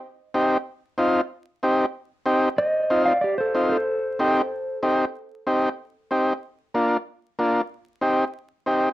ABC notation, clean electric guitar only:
X:1
M:4/4
L:1/8
Q:1/4=188
K:Cdor
V:1 name="Clean electric guitar"
z8 | z8 | [ce]3 [df] [Gd] [Ac]2 [Ac]- | [Ac]6 z2 |
z8 | z8 | z8 |]